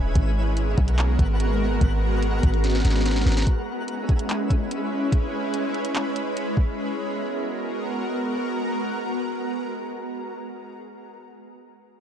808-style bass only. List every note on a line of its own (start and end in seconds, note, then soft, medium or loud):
0.00 0.15 E1 loud
0.16 0.75 G#1 loud
0.78 1.17 B1 loud
1.19 1.79 G#1 loud
1.81 2.41 G#1 loud
2.43 2.83 G#1 loud
2.85 3.24 G#1 loud
3.26 3.46 G#1 loud